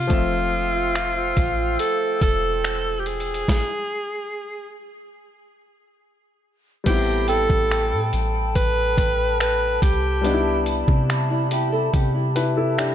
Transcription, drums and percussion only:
0, 0, Header, 1, 2, 480
1, 0, Start_track
1, 0, Key_signature, 0, "minor"
1, 0, Tempo, 845070
1, 59, Time_signature, 4, 2, 24, 8
1, 7354, End_track
2, 0, Start_track
2, 0, Title_t, "Drums"
2, 56, Note_on_c, 9, 42, 70
2, 58, Note_on_c, 9, 36, 106
2, 113, Note_off_c, 9, 42, 0
2, 115, Note_off_c, 9, 36, 0
2, 542, Note_on_c, 9, 26, 107
2, 542, Note_on_c, 9, 42, 63
2, 599, Note_off_c, 9, 26, 0
2, 599, Note_off_c, 9, 42, 0
2, 777, Note_on_c, 9, 42, 65
2, 778, Note_on_c, 9, 36, 84
2, 833, Note_off_c, 9, 42, 0
2, 834, Note_off_c, 9, 36, 0
2, 1018, Note_on_c, 9, 42, 72
2, 1075, Note_off_c, 9, 42, 0
2, 1258, Note_on_c, 9, 36, 91
2, 1260, Note_on_c, 9, 42, 74
2, 1315, Note_off_c, 9, 36, 0
2, 1317, Note_off_c, 9, 42, 0
2, 1502, Note_on_c, 9, 26, 107
2, 1506, Note_on_c, 9, 42, 67
2, 1559, Note_off_c, 9, 26, 0
2, 1563, Note_off_c, 9, 42, 0
2, 1738, Note_on_c, 9, 42, 44
2, 1795, Note_off_c, 9, 42, 0
2, 1819, Note_on_c, 9, 42, 61
2, 1875, Note_off_c, 9, 42, 0
2, 1899, Note_on_c, 9, 42, 68
2, 1955, Note_off_c, 9, 42, 0
2, 1979, Note_on_c, 9, 36, 113
2, 1983, Note_on_c, 9, 38, 90
2, 2036, Note_off_c, 9, 36, 0
2, 2040, Note_off_c, 9, 38, 0
2, 3897, Note_on_c, 9, 42, 73
2, 3898, Note_on_c, 9, 36, 103
2, 3898, Note_on_c, 9, 49, 100
2, 3954, Note_off_c, 9, 42, 0
2, 3955, Note_off_c, 9, 36, 0
2, 3955, Note_off_c, 9, 49, 0
2, 4134, Note_on_c, 9, 42, 73
2, 4191, Note_off_c, 9, 42, 0
2, 4258, Note_on_c, 9, 36, 85
2, 4315, Note_off_c, 9, 36, 0
2, 4382, Note_on_c, 9, 26, 111
2, 4382, Note_on_c, 9, 42, 65
2, 4439, Note_off_c, 9, 26, 0
2, 4439, Note_off_c, 9, 42, 0
2, 4617, Note_on_c, 9, 42, 70
2, 4674, Note_off_c, 9, 42, 0
2, 4859, Note_on_c, 9, 42, 73
2, 4860, Note_on_c, 9, 36, 90
2, 4916, Note_off_c, 9, 36, 0
2, 4916, Note_off_c, 9, 42, 0
2, 5098, Note_on_c, 9, 36, 89
2, 5100, Note_on_c, 9, 42, 69
2, 5155, Note_off_c, 9, 36, 0
2, 5157, Note_off_c, 9, 42, 0
2, 5342, Note_on_c, 9, 26, 116
2, 5346, Note_on_c, 9, 42, 68
2, 5399, Note_off_c, 9, 26, 0
2, 5402, Note_off_c, 9, 42, 0
2, 5579, Note_on_c, 9, 36, 92
2, 5583, Note_on_c, 9, 42, 78
2, 5636, Note_off_c, 9, 36, 0
2, 5639, Note_off_c, 9, 42, 0
2, 5819, Note_on_c, 9, 42, 75
2, 5876, Note_off_c, 9, 42, 0
2, 6056, Note_on_c, 9, 42, 71
2, 6112, Note_off_c, 9, 42, 0
2, 6179, Note_on_c, 9, 36, 90
2, 6236, Note_off_c, 9, 36, 0
2, 6304, Note_on_c, 9, 26, 115
2, 6304, Note_on_c, 9, 42, 63
2, 6360, Note_off_c, 9, 42, 0
2, 6361, Note_off_c, 9, 26, 0
2, 6538, Note_on_c, 9, 42, 72
2, 6595, Note_off_c, 9, 42, 0
2, 6779, Note_on_c, 9, 42, 73
2, 6780, Note_on_c, 9, 36, 89
2, 6836, Note_off_c, 9, 42, 0
2, 6837, Note_off_c, 9, 36, 0
2, 7020, Note_on_c, 9, 42, 71
2, 7077, Note_off_c, 9, 42, 0
2, 7262, Note_on_c, 9, 26, 115
2, 7266, Note_on_c, 9, 42, 64
2, 7319, Note_off_c, 9, 26, 0
2, 7323, Note_off_c, 9, 42, 0
2, 7354, End_track
0, 0, End_of_file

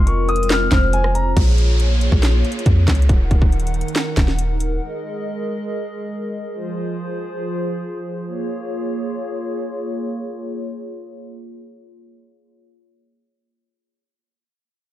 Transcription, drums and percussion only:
0, 0, Header, 1, 2, 480
1, 0, Start_track
1, 0, Key_signature, -5, "minor"
1, 0, Tempo, 431655
1, 1519, Time_signature, 4, 2, 24, 8
1, 16592, End_track
2, 0, Start_track
2, 0, Title_t, "Drums"
2, 77, Note_on_c, 9, 42, 73
2, 188, Note_off_c, 9, 42, 0
2, 318, Note_on_c, 9, 42, 44
2, 398, Note_off_c, 9, 42, 0
2, 398, Note_on_c, 9, 42, 59
2, 478, Note_off_c, 9, 42, 0
2, 478, Note_on_c, 9, 42, 74
2, 559, Note_off_c, 9, 42, 0
2, 559, Note_on_c, 9, 37, 72
2, 559, Note_on_c, 9, 38, 122
2, 559, Note_on_c, 9, 42, 90
2, 563, Note_on_c, 9, 39, 102
2, 670, Note_off_c, 9, 37, 0
2, 670, Note_off_c, 9, 38, 0
2, 671, Note_off_c, 9, 42, 0
2, 675, Note_off_c, 9, 39, 0
2, 796, Note_on_c, 9, 42, 72
2, 797, Note_on_c, 9, 38, 107
2, 799, Note_on_c, 9, 36, 111
2, 802, Note_on_c, 9, 39, 85
2, 907, Note_off_c, 9, 42, 0
2, 908, Note_off_c, 9, 38, 0
2, 910, Note_off_c, 9, 36, 0
2, 913, Note_off_c, 9, 39, 0
2, 1036, Note_on_c, 9, 42, 89
2, 1148, Note_off_c, 9, 42, 0
2, 1159, Note_on_c, 9, 37, 96
2, 1270, Note_off_c, 9, 37, 0
2, 1280, Note_on_c, 9, 42, 77
2, 1391, Note_off_c, 9, 42, 0
2, 1519, Note_on_c, 9, 36, 123
2, 1519, Note_on_c, 9, 42, 72
2, 1519, Note_on_c, 9, 49, 90
2, 1630, Note_off_c, 9, 36, 0
2, 1630, Note_off_c, 9, 42, 0
2, 1630, Note_off_c, 9, 49, 0
2, 1759, Note_on_c, 9, 42, 61
2, 1870, Note_off_c, 9, 42, 0
2, 1999, Note_on_c, 9, 42, 80
2, 2110, Note_off_c, 9, 42, 0
2, 2238, Note_on_c, 9, 42, 74
2, 2349, Note_off_c, 9, 42, 0
2, 2359, Note_on_c, 9, 36, 95
2, 2470, Note_off_c, 9, 36, 0
2, 2480, Note_on_c, 9, 38, 117
2, 2481, Note_on_c, 9, 42, 88
2, 2485, Note_on_c, 9, 39, 96
2, 2591, Note_off_c, 9, 38, 0
2, 2592, Note_off_c, 9, 42, 0
2, 2596, Note_off_c, 9, 39, 0
2, 2720, Note_on_c, 9, 42, 42
2, 2799, Note_off_c, 9, 42, 0
2, 2799, Note_on_c, 9, 42, 56
2, 2879, Note_off_c, 9, 42, 0
2, 2879, Note_on_c, 9, 42, 70
2, 2957, Note_off_c, 9, 42, 0
2, 2957, Note_on_c, 9, 42, 78
2, 2959, Note_on_c, 9, 36, 101
2, 3068, Note_off_c, 9, 42, 0
2, 3071, Note_off_c, 9, 36, 0
2, 3199, Note_on_c, 9, 42, 59
2, 3200, Note_on_c, 9, 36, 95
2, 3200, Note_on_c, 9, 38, 105
2, 3204, Note_on_c, 9, 39, 83
2, 3280, Note_off_c, 9, 42, 0
2, 3280, Note_on_c, 9, 42, 59
2, 3311, Note_off_c, 9, 38, 0
2, 3312, Note_off_c, 9, 36, 0
2, 3315, Note_off_c, 9, 39, 0
2, 3360, Note_off_c, 9, 42, 0
2, 3360, Note_on_c, 9, 42, 57
2, 3439, Note_off_c, 9, 42, 0
2, 3439, Note_on_c, 9, 36, 120
2, 3439, Note_on_c, 9, 42, 72
2, 3550, Note_off_c, 9, 36, 0
2, 3550, Note_off_c, 9, 42, 0
2, 3679, Note_on_c, 9, 42, 61
2, 3680, Note_on_c, 9, 36, 86
2, 3790, Note_off_c, 9, 42, 0
2, 3791, Note_off_c, 9, 36, 0
2, 3799, Note_on_c, 9, 36, 91
2, 3910, Note_off_c, 9, 36, 0
2, 3919, Note_on_c, 9, 42, 45
2, 3998, Note_off_c, 9, 42, 0
2, 3998, Note_on_c, 9, 42, 61
2, 4079, Note_off_c, 9, 42, 0
2, 4079, Note_on_c, 9, 42, 76
2, 4159, Note_off_c, 9, 42, 0
2, 4159, Note_on_c, 9, 42, 42
2, 4239, Note_off_c, 9, 42, 0
2, 4239, Note_on_c, 9, 42, 55
2, 4319, Note_off_c, 9, 42, 0
2, 4319, Note_on_c, 9, 42, 66
2, 4400, Note_off_c, 9, 42, 0
2, 4400, Note_on_c, 9, 38, 121
2, 4400, Note_on_c, 9, 42, 85
2, 4404, Note_on_c, 9, 39, 93
2, 4511, Note_off_c, 9, 38, 0
2, 4511, Note_off_c, 9, 42, 0
2, 4515, Note_off_c, 9, 39, 0
2, 4637, Note_on_c, 9, 42, 68
2, 4638, Note_on_c, 9, 38, 100
2, 4639, Note_on_c, 9, 36, 105
2, 4643, Note_on_c, 9, 39, 82
2, 4748, Note_off_c, 9, 42, 0
2, 4749, Note_off_c, 9, 38, 0
2, 4750, Note_off_c, 9, 36, 0
2, 4754, Note_off_c, 9, 39, 0
2, 4760, Note_on_c, 9, 38, 69
2, 4871, Note_off_c, 9, 38, 0
2, 4877, Note_on_c, 9, 42, 87
2, 4988, Note_off_c, 9, 42, 0
2, 5120, Note_on_c, 9, 42, 74
2, 5231, Note_off_c, 9, 42, 0
2, 16592, End_track
0, 0, End_of_file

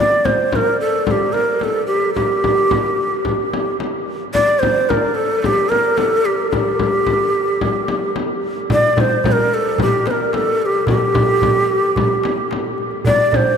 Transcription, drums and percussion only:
0, 0, Header, 1, 3, 480
1, 0, Start_track
1, 0, Tempo, 544465
1, 1913, Time_signature, 4, 2, 24, 8
1, 11967, End_track
2, 0, Start_track
2, 0, Title_t, "Darbuka"
2, 7669, Note_on_c, 9, 64, 77
2, 7757, Note_off_c, 9, 64, 0
2, 7907, Note_on_c, 9, 64, 80
2, 7995, Note_off_c, 9, 64, 0
2, 8147, Note_on_c, 9, 64, 80
2, 8235, Note_off_c, 9, 64, 0
2, 8625, Note_on_c, 9, 64, 84
2, 8714, Note_off_c, 9, 64, 0
2, 8866, Note_on_c, 9, 63, 62
2, 8954, Note_off_c, 9, 63, 0
2, 9107, Note_on_c, 9, 63, 59
2, 9195, Note_off_c, 9, 63, 0
2, 9232, Note_on_c, 9, 62, 21
2, 9320, Note_off_c, 9, 62, 0
2, 9347, Note_on_c, 9, 62, 22
2, 9435, Note_off_c, 9, 62, 0
2, 9462, Note_on_c, 9, 62, 23
2, 9551, Note_off_c, 9, 62, 0
2, 9581, Note_on_c, 9, 64, 86
2, 9669, Note_off_c, 9, 64, 0
2, 9825, Note_on_c, 9, 64, 85
2, 9914, Note_off_c, 9, 64, 0
2, 10065, Note_on_c, 9, 64, 76
2, 10153, Note_off_c, 9, 64, 0
2, 10545, Note_on_c, 9, 64, 75
2, 10633, Note_off_c, 9, 64, 0
2, 10787, Note_on_c, 9, 63, 64
2, 10875, Note_off_c, 9, 63, 0
2, 11028, Note_on_c, 9, 63, 61
2, 11116, Note_off_c, 9, 63, 0
2, 11147, Note_on_c, 9, 62, 26
2, 11235, Note_off_c, 9, 62, 0
2, 11265, Note_on_c, 9, 62, 29
2, 11354, Note_off_c, 9, 62, 0
2, 11382, Note_on_c, 9, 62, 27
2, 11470, Note_off_c, 9, 62, 0
2, 11501, Note_on_c, 9, 64, 71
2, 11589, Note_off_c, 9, 64, 0
2, 11748, Note_on_c, 9, 64, 75
2, 11836, Note_off_c, 9, 64, 0
2, 11967, End_track
3, 0, Start_track
3, 0, Title_t, "Frame drum"
3, 223, Note_on_c, 9, 64, 82
3, 311, Note_off_c, 9, 64, 0
3, 462, Note_on_c, 9, 64, 87
3, 551, Note_off_c, 9, 64, 0
3, 941, Note_on_c, 9, 64, 78
3, 1029, Note_off_c, 9, 64, 0
3, 1184, Note_on_c, 9, 64, 54
3, 1272, Note_off_c, 9, 64, 0
3, 1421, Note_on_c, 9, 64, 56
3, 1509, Note_off_c, 9, 64, 0
3, 1909, Note_on_c, 9, 64, 67
3, 1997, Note_off_c, 9, 64, 0
3, 2150, Note_on_c, 9, 64, 69
3, 2238, Note_off_c, 9, 64, 0
3, 2389, Note_on_c, 9, 64, 75
3, 2477, Note_off_c, 9, 64, 0
3, 2864, Note_on_c, 9, 64, 74
3, 2952, Note_off_c, 9, 64, 0
3, 3116, Note_on_c, 9, 64, 60
3, 3204, Note_off_c, 9, 64, 0
3, 3351, Note_on_c, 9, 64, 58
3, 3439, Note_off_c, 9, 64, 0
3, 3832, Note_on_c, 9, 64, 67
3, 3921, Note_off_c, 9, 64, 0
3, 4079, Note_on_c, 9, 64, 72
3, 4167, Note_off_c, 9, 64, 0
3, 4321, Note_on_c, 9, 64, 80
3, 4409, Note_off_c, 9, 64, 0
3, 4796, Note_on_c, 9, 64, 76
3, 4884, Note_off_c, 9, 64, 0
3, 5039, Note_on_c, 9, 64, 64
3, 5128, Note_off_c, 9, 64, 0
3, 5269, Note_on_c, 9, 64, 64
3, 5357, Note_off_c, 9, 64, 0
3, 5752, Note_on_c, 9, 64, 72
3, 5840, Note_off_c, 9, 64, 0
3, 5989, Note_on_c, 9, 64, 72
3, 6078, Note_off_c, 9, 64, 0
3, 6228, Note_on_c, 9, 64, 81
3, 6316, Note_off_c, 9, 64, 0
3, 6712, Note_on_c, 9, 64, 74
3, 6800, Note_off_c, 9, 64, 0
3, 6950, Note_on_c, 9, 64, 66
3, 7038, Note_off_c, 9, 64, 0
3, 7192, Note_on_c, 9, 64, 61
3, 7280, Note_off_c, 9, 64, 0
3, 7670, Note_on_c, 9, 64, 78
3, 7758, Note_off_c, 9, 64, 0
3, 7914, Note_on_c, 9, 64, 79
3, 8002, Note_off_c, 9, 64, 0
3, 8158, Note_on_c, 9, 64, 87
3, 8246, Note_off_c, 9, 64, 0
3, 8636, Note_on_c, 9, 64, 81
3, 8724, Note_off_c, 9, 64, 0
3, 8876, Note_on_c, 9, 64, 62
3, 8965, Note_off_c, 9, 64, 0
3, 9116, Note_on_c, 9, 64, 63
3, 9204, Note_off_c, 9, 64, 0
3, 9593, Note_on_c, 9, 64, 76
3, 9681, Note_off_c, 9, 64, 0
3, 9830, Note_on_c, 9, 64, 83
3, 9918, Note_off_c, 9, 64, 0
3, 10075, Note_on_c, 9, 64, 83
3, 10163, Note_off_c, 9, 64, 0
3, 10555, Note_on_c, 9, 64, 78
3, 10643, Note_off_c, 9, 64, 0
3, 10801, Note_on_c, 9, 64, 63
3, 10889, Note_off_c, 9, 64, 0
3, 11042, Note_on_c, 9, 64, 64
3, 11131, Note_off_c, 9, 64, 0
3, 11523, Note_on_c, 9, 64, 77
3, 11612, Note_off_c, 9, 64, 0
3, 11760, Note_on_c, 9, 64, 80
3, 11848, Note_off_c, 9, 64, 0
3, 11967, End_track
0, 0, End_of_file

